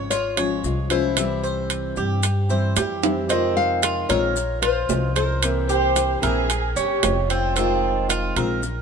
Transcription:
Already playing: upright bass G#1, nylon-string guitar C#4 F4
0.10 cuban tres F4, nylon-string guitar C#5, muted nylon-string guitar stroke, high timbale, maracas
0.37 nylon-string guitar F3 G#3 C#4 F4, cuban tres C#5, high timbale, maracas
0.64 upright bass C2, nylon-string guitar F3 G#3 C#4 F4, maracas
0.90 nylon-string guitar F3 G#3 C#4 F4 C5, cuban tres E4, high timbale, maracas
1.16 nylon-string guitar C3 E3 G3 C4 E4, high timbale, maracas
1.43 cuban tres C5, maracas
1.70 high timbale, maracas
1.96 upright bass G2, cuban tres G4, maracas
2.23 muted nylon-string guitar stroke, high timbale, maracas
2.49 nylon-string guitar E3 G3 C4 E4, cuban tres C5, maracas
2.76 upright bass F2, nylon-string guitar E3 G3 C4 E4, cuban tres G4, high timbale, low timbale, maracas
3.03 nylon-string guitar E3 G3 C4 E4, high timbale, maracas
3.29 nylon-string guitar C3 D#3 G#3 C4 F4 D#5, cuban tres C4, high timbale, maracas
3.57 nylon-string guitar F5
3.82 cuban tres F4, high timbale, low timbale, maracas
4.09 upright bass A#1, nylon-string guitar D#3 G#3 C4 F4 C#5, cuban tres A#4, high timbale, maracas
4.36 muted nylon-string guitar stroke, maracas
4.62 cuban tres F4, nylon-string guitar C5, high timbale
4.89 upright bass C2, nylon-string guitar F3 G#3 C#4 F4, low timbale, maracas
5.16 nylon-string guitar A#4, cuban tres C5, high timbale, maracas
5.42 nylon-string guitar C3 E3 A#3 C4 E4, high timbale, maracas
5.69 cuban tres G4, violin section C5, maracas
5.96 high timbale, low timbale, maracas
6.22 upright bass A#1, nylon-string guitar E3 A#3 C4 E4, violin section G#4, cuban tres A#4, high timbale, maracas
6.50 muted nylon-string guitar stroke, high timbale, maracas
6.76 upright bass G1, cuban tres C#4, violin section G4, maracas
7.03 upright bass F1, nylon-string guitar F3 G#3 C#4 F4, high timbale, low timbale, maracas
7.29 cuban tres C4, violin section F4, high timbale, maracas
7.56 nylon-string guitar C3 D#3 G#3 C4 F4, cuban tres C4, high timbale, maracas
8.09 cuban tres F4, high timbale, low timbale, maracas
8.36 upright bass A#1, nylon-string guitar D#3 G#3 C4 F4, cuban tres A#4, high timbale, maracas
8.63 muted nylon-string guitar stroke, maracas

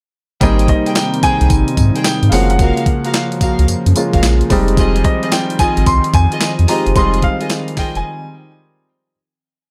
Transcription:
0.41 analog synth bass G#1, analog synth pad C3 D#3 G3 C4 D#4, grand piano G3 A#3 C4 D#4, string section G#4 C5 G5, kick, closed hi-hat, tambourine
0.59 closed hi-hat
0.68 grand piano D#5, kick, closed hi-hat
0.86 string section G#4 C5 G5, closed hi-hat
0.95 grand piano G5, snare, clap, closed hi-hat, tambourine
1.14 closed hi-hat
1.23 analog synth bass C2, string section G#4 C5 G5, grand piano G#5, kick, closed hi-hat, tambourine
1.41 analog synth bass C2, closed hi-hat
1.50 analog synth bass G#1, kick, closed hi-hat, tambourine
1.68 closed hi-hat
1.77 analog synth bass G#2, kick, closed hi-hat, tambourine
1.95 string section G#4 C5 G5, closed hi-hat
2.05 grand piano G5, snare, clap, closed hi-hat, tambourine
2.23 analog synth bass G#2, closed hi-hat
2.29 analog synth bass F#1, analog synth pad C#3 F3 A#3, grand piano G#3 A#3 C#4 F5 F#5, string section F#4 A#4 F5, open hi-hat, tambourine
2.34 grand piano F3
2.50 grand piano F#5, closed hi-hat
2.59 string section F#4 A#4 F5, kick, closed hi-hat, tambourine
2.77 closed hi-hat
2.86 kick, closed hi-hat
3.04 string section F#4 A#4 F5, closed hi-hat
3.14 snare, clap, closed hi-hat, tambourine
3.32 closed hi-hat
3.41 analog synth bass C#2, string section F#4 A#4 F5, kick, closed hi-hat, tambourine
3.59 analog synth bass C#2, closed hi-hat
3.68 analog synth bass F#2, closed hi-hat, tambourine
3.86 analog synth bass F#2, closed hi-hat
3.96 grand piano G#3 A#3 C#4 F4, closed hi-hat, tambourine
4.13 analog synth bass F#1, string section F#4 A#4 F5, kick, closed hi-hat
4.23 analog synth bass A#1, snare, clap, closed hi-hat, tambourine
4.41 closed hi-hat
4.50 analog synth bass F1, analog synth pad D#3 C4, grand piano G3 G#3 C4 D#4, kick, open hi-hat, tambourine
4.68 closed hi-hat
4.77 string section F4 G#4 D#5, kick, closed hi-hat, tambourine
4.96 closed hi-hat
5.04 grand piano D#5, kick, closed hi-hat
5.22 string section F4 G#4 D#5, closed hi-hat
5.32 grand piano G5, snare, clap, closed hi-hat, tambourine
5.50 closed hi-hat
5.59 analog synth bass G#1, string section F4 G#4 D#5, grand piano G#5, kick, closed hi-hat, tambourine
5.77 analog synth bass G#1, closed hi-hat
5.86 analog synth bass C2, grand piano C6, kick, closed hi-hat, tambourine
6.04 closed hi-hat
6.14 analog synth bass F2, grand piano G#5, kick, closed hi-hat, tambourine
6.31 string section F4 G#4 D#5, closed hi-hat
6.41 snare, clap, closed hi-hat, tambourine
6.59 analog synth bass F2, closed hi-hat
6.68 grand piano G#3 C4 D#4 G4 A#5, string section F4 G#4 D#5, open hi-hat, tambourine
6.86 analog synth bass F#1, closed hi-hat
6.95 analog synth bass F1, analog synth pad D#3, grand piano G3 G#3 C4 D#4 C6, string section F4 G#4 D#5, kick, closed hi-hat, tambourine
7.14 closed hi-hat
7.22 grand piano F5, kick, closed hi-hat
7.40 string section F4 G#4 D#5, closed hi-hat
7.50 snare, clap, closed hi-hat, tambourine
7.68 closed hi-hat
7.77 analog synth bass F1, string section F4 G#4 D#5, grand piano G5, kick, snare, open hi-hat, tambourine
7.95 analog synth bass F1, grand piano G#5, closed hi-hat

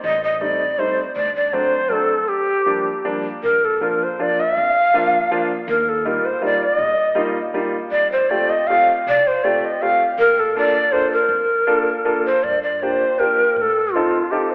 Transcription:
0.03 upright bass A1, shakuhachi D#5
0.24 shakuhachi D#5
0.35 shakuhachi D#5
0.41 upright piano G3 A3 C4 D#4, shakuhachi D5
0.78 upright piano G3 A3 C4 D#4, shakuhachi C5
1.15 upright bass D2, shakuhachi D5
1.36 shakuhachi D5
1.53 upright piano F#3 A3 C4 D4, shakuhachi C5
1.89 upright piano F#3 A3 C4 D4, shakuhachi A4 A#4
2.28 shakuhachi G4
2.66 upright piano F3 G3 A#3 D4
3.05 upright piano F3 G3 A#3 D4
3.43 upright bass A#1, shakuhachi A#4
3.65 shakuhachi A4
3.81 upright piano F3 A#3 D4 F4, shakuhachi A#4
4.04 shakuhachi C5
4.19 upright piano F3 A#3 D4 F4, shakuhachi D5
4.40 shakuhachi E5
4.56 upright bass F2, shakuhachi F5
4.94 upright piano F3 A#3 D4 F4
5.31 upright piano F3 A#3 D4 F4
5.68 upright bass D#2, shakuhachi A#4
5.89 shakuhachi A4
6.05 upright piano G3 A#3 D#4 F4, shakuhachi A#4
6.25 shakuhachi C5
6.42 upright piano G3 A#3 D#4 F4, shakuhachi D5
6.63 shakuhachi D5
6.78 upright bass A#1, shakuhachi D#5
7.15 upright piano G3 A#3 D#4 F4
7.54 upright piano G3 A#3 D#4 F4
7.91 upright bass F2, shakuhachi D5
8.12 shakuhachi C5
8.30 upright piano A3 C4 F4 G4, shakuhachi D5
8.50 shakuhachi D#5
8.67 upright piano A3 C4 F4 G4, shakuhachi F5
9.06 upright bass C2, shakuhachi D5
9.27 shakuhachi C5
9.44 upright piano A3 C4 F4 G4, shakuhachi D5
9.65 shakuhachi D#5
9.82 upright piano A3 C4 F4 G4, shakuhachi F5
10.18 upright bass A#1, shakuhachi A#4
10.40 shakuhachi A4
10.55 upright piano A#3 D4 F4 A4, shakuhachi D5
10.92 upright piano A#3 D4 F4 A4, shakuhachi C5
11.13 shakuhachi A#4
11.29 upright bass F2
11.67 upright piano A#3 D4 F4 A4
12.05 upright piano A#3 D4 F4 A4
12.26 shakuhachi C5
12.43 upright bass G2, shakuhachi D5
12.63 shakuhachi D5
12.82 upright piano A#3 D4 F4 G4, shakuhachi C5
13.19 upright piano A#3 D4 F4 G4, shakuhachi A#4
13.56 upright bass A2, shakuhachi A#4
13.62 shakuhachi A4
13.93 upright piano C4 D#4 F4 A4, shakuhachi F4
14.31 upright piano C4 D#4 F4 A4, shakuhachi G4
14.50 shakuhachi C5

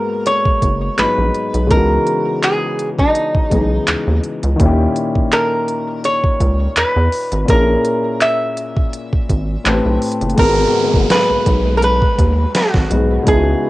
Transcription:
Already playing: grand piano G#2 G#3 A#3 B3 F#4, resonator guitar played with a steel bar A#4
0.26 resonator guitar played with a steel bar C#5, closed hi-hat
0.45 kick
0.62 analog synth bass F#1, kick, closed hi-hat
0.97 analog synth bass A#1, grand piano G#2 F#3 G#3 B3, resonator guitar played with a steel bar B4, clap, closed hi-hat
1.02 grand piano D#4
1.18 analog synth bass A#1
1.34 closed hi-hat
1.54 analog synth bass B1, closed hi-hat
1.67 analog synth bass C#2, grand piano C#3 G#3 B3, resonator guitar played with a steel bar A#4, kick, closed hi-hat
1.72 grand piano E3 D#4 F#4
2.07 closed hi-hat
2.43 resonator guitar played with a steel bar G#4, clap, closed hi-hat
2.79 closed hi-hat
2.99 resonator guitar played with a steel bar D#4, kick
3.15 closed hi-hat
3.35 kick
3.50 analog synth bass B1, grand piano C#3 E3 G#3 B3 D#4, kick, closed hi-hat
3.55 grand piano G#4
3.87 analog synth bass D#2, clap, closed hi-hat
4.07 analog synth bass D#2
4.24 closed hi-hat
4.43 analog synth bass C#2, closed hi-hat
4.56 analog synth bass D#2, grand piano A#2 D#3, kick, closed hi-hat
4.60 grand piano C#4 E4
4.65 grand piano G4
4.96 closed hi-hat
5.15 kick
5.32 resonator guitar played with a steel bar A#4, clap, closed hi-hat
5.68 closed hi-hat
6.04 resonator guitar played with a steel bar C#5, closed hi-hat
6.24 kick
6.40 analog synth bass C#2, kick, closed hi-hat
6.76 analog synth bass E2, resonator guitar played with a steel bar B4, clap, closed hi-hat
6.96 analog synth bass E2
7.12 closed hi-hat, open hi-hat
7.32 analog synth bass G#1, closed hi-hat
7.45 analog synth bass A#1, grand piano A#2 A#3, kick, closed hi-hat
7.50 grand piano C#4 E4, resonator guitar played with a steel bar A#4
7.54 grand piano G#4
7.85 closed hi-hat
8.21 resonator guitar played with a steel bar E5, clap, closed hi-hat
8.57 closed hi-hat
8.77 kick
8.93 closed hi-hat
9.13 kick
9.29 analog synth bass G#1, kick, closed hi-hat
9.64 analog synth bass A1, grand piano A2 A3 C4 G4, clap, closed hi-hat
9.69 grand piano B4
9.85 analog synth bass B1
10.02 closed hi-hat, open hi-hat
10.12 closed hi-hat
10.21 analog synth bass F#1, closed hi-hat
10.30 closed hi-hat
10.34 analog synth bass G#1, grand piano G#2 G#3, kick, closed hi-hat, downlifter
10.39 grand piano B3 F#4, resonator guitar played with a steel bar A#4
10.43 grand piano G#4
10.94 analog synth bass F#1, kick
11.10 resonator guitar played with a steel bar B4, snare, closed hi-hat
11.30 analog synth bass B1
11.46 analog synth bass B1, kick, closed hi-hat
11.77 resonator guitar played with a steel bar A#4
11.82 resonator guitar played with a steel bar B4, closed hi-hat
12.02 kick
12.19 analog synth bass D#2, kick, closed hi-hat
12.55 resonator guitar played with a steel bar F#4, snare, closed hi-hat
12.74 analog synth bass G#1, kick, snare
12.89 analog synth bass B1, grand piano G#2 G#3 B3 F#4, closed hi-hat
12.94 grand piano G#4
13.23 analog synth bass C#2, grand piano C#3 G#3 B3, kick, closed hi-hat
13.28 grand piano D#4 E4, resonator guitar played with a steel bar G#4
13.32 grand piano F4
13.39 grand piano F#4

